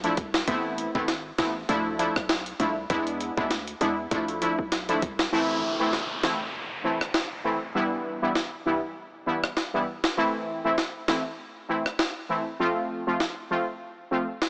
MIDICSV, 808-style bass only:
0, 0, Header, 1, 2, 480
1, 0, Start_track
1, 0, Tempo, 606061
1, 378, Time_signature, 4, 2, 24, 8
1, 11478, End_track
2, 0, Start_track
2, 0, Title_t, "808-style bass"
2, 0, Program_c, 0, 38
2, 0, Note_on_c, 0, 35, 83
2, 86, Note_off_c, 0, 35, 0
2, 138, Note_on_c, 0, 36, 94
2, 342, Note_off_c, 0, 36, 0
2, 377, Note_on_c, 0, 33, 105
2, 696, Note_off_c, 0, 33, 0
2, 753, Note_on_c, 0, 32, 96
2, 1046, Note_off_c, 0, 32, 0
2, 1099, Note_on_c, 0, 33, 104
2, 1303, Note_off_c, 0, 33, 0
2, 1337, Note_on_c, 0, 38, 107
2, 1656, Note_off_c, 0, 38, 0
2, 1712, Note_on_c, 0, 35, 83
2, 2006, Note_off_c, 0, 35, 0
2, 2057, Note_on_c, 0, 36, 98
2, 2261, Note_off_c, 0, 36, 0
2, 2297, Note_on_c, 0, 40, 114
2, 2616, Note_off_c, 0, 40, 0
2, 2673, Note_on_c, 0, 38, 95
2, 2967, Note_off_c, 0, 38, 0
2, 3017, Note_on_c, 0, 40, 93
2, 3222, Note_off_c, 0, 40, 0
2, 3258, Note_on_c, 0, 38, 111
2, 3576, Note_off_c, 0, 38, 0
2, 3632, Note_on_c, 0, 35, 82
2, 3926, Note_off_c, 0, 35, 0
2, 3979, Note_on_c, 0, 36, 94
2, 4183, Note_off_c, 0, 36, 0
2, 11478, End_track
0, 0, End_of_file